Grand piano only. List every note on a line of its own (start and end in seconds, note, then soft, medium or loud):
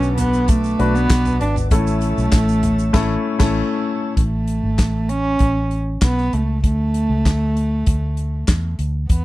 0.00 1.73 B2 medium
0.00 1.74 D3 medium
0.00 0.79 B3 medium
0.00 0.79 F#4 medium
0.00 1.72 A4 loud
0.79 1.55 B3 medium
0.79 1.55 D4 medium
0.79 1.55 F#4 medium
0.79 1.55 B4 medium
1.71 2.60 A2 medium
1.71 2.72 A3 medium
1.71 2.73 C#4 medium
1.71 2.73 E4 medium
1.71 2.73 A4 medium
2.93 3.15 A3 medium
2.93 3.15 C#4 medium
2.93 3.15 E4 medium
2.93 3.15 A4 medium
3.39 3.60 A3 medium
3.39 3.61 C#4 medium
3.39 3.61 E4 medium
3.39 3.61 A4 medium